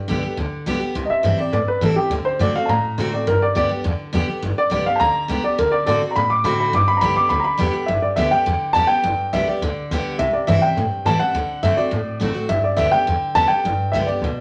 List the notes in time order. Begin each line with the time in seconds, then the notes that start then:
Already playing: G2
0.08 B1 D3 G3 B3 G4
0.23 B3 G4, muted upright bass stroke
0.37 D2 D3
0.52 muted upright bass stroke
0.66 B1 D3 G3 B3 G4
0.80 B3 G4, muted upright bass stroke
0.95 C2 C3
1.05 D#5
1.10 E5, muted upright bass stroke
1.23 G2 E3 G3 C4 E4
1.38 C4 E4 D5
1.52 G2 A2 D5
1.67 B4, muted upright bass stroke
1.81 A2 E3 G3 C4 E4 A4
1.96 C4 E4 G4, muted upright bass stroke
2.10 D2 D3
2.25 C5, muted upright bass stroke
2.39 F#2 D3 A3 C4 F#4 D5
2.55 C4 F#4 F5
2.65 A2 A5
2.69 A#5
2.84 muted upright bass stroke
2.98 C3 D3 A3 C4 F#4
3.12 C4 F#4 D5, muted upright bass stroke
3.27 G1 G2 A#4
3.41 D5, muted upright bass stroke
3.55 D2 D3 G3 B3 G4 D5
3.69 B3 G4, muted upright bass stroke
3.84 E2 D3
3.99 muted upright bass stroke
4.13 E2 D3 G3 B3 G4
4.28 B3 G4
4.42 G1 G2
4.57 D5, muted upright bass stroke
4.70 B1 D3 G3 B3 G4 D5
4.86 B3 G4 F5, muted upright bass stroke
4.96 A5
5.00 D2 D3 A#5
5.15 muted upright bass stroke
5.28 C#2 D3 G3 B3 G4
5.42 B3 G4 D5
5.58 D2 D3 A#4
5.72 D5
5.86 A2 D3 A3 C4 F#4 A4 D5
6.02 C4 F#4
6.11 A#5
6.16 A2 B2 B5
6.30 D6, muted upright bass stroke
6.44 C3 D3 A3 C4 F#4 B5
6.58 B5, muted upright bass stroke
6.73 G1 G2 D6
6.88 B5
6.97 A#5
7.01 B1 D3 G3 B3 G4 B5
7.15 B3 G4 D6, muted upright bass stroke
7.29 D2 D3 B5
7.40 A#5
7.44 B5, muted upright bass stroke
7.58 E2 D3 G3 B3 G4
7.73 B3 G4
7.86 G1 G2 E5
8.02 D5, muted upright bass stroke
8.16 D2 D3 G3 B3 G4 E5
8.31 B3 G4 G5
8.46 E2 D3
8.61 muted upright bass stroke
8.73 E2 D3 G3 B3 G4 A5
8.87 B3 G4 G5, muted upright bass stroke
9.04 G1 G2
9.18 muted upright bass stroke
9.33 B1 D3 G3 B3 G4 E5
9.47 B3 G4 D5, muted upright bass stroke
9.62 D2 D3
9.76 muted upright bass stroke
9.91 D2 D3 G3 B3 G4
10.05 muted upright bass stroke
10.19 C2 C3 E5
10.33 D5, muted upright bass stroke
10.47 G2 E3 G3 C4 E4 E5
10.62 C4 E4 G5
10.77 G2 A2
10.91 muted upright bass stroke
11.05 A2 E3 G3 C4 E4 A5
11.19 C4 E4 F#5, muted upright bass stroke
11.34 D2 D3
11.48 muted upright bass stroke
11.63 F#2 D3 A3 C4 F#4 E5
11.77 C4 F#4 D5
11.91 A2
12.07 muted upright bass stroke
12.20 A1 D3 A3 C4 F#4
12.34 C4 F#4
12.49 G1 G2 E5
12.64 D5, muted upright bass stroke
12.77 D2 D3 G3 B3 G4 E5
12.91 B3 G4 G5, muted upright bass stroke
13.07 E2 D3
13.21 muted upright bass stroke
13.35 E2 D3 G3 B3 G4 A5
13.48 G4 G5, muted upright bass stroke
13.52 B3
13.65 G1 G2
13.79 muted upright bass stroke
13.92 B1 D3 G3 B3 E5
13.96 G4
14.06 G4 D5, muted upright bass stroke
14.11 B3
14.22 D2 B2
14.37 muted upright bass stroke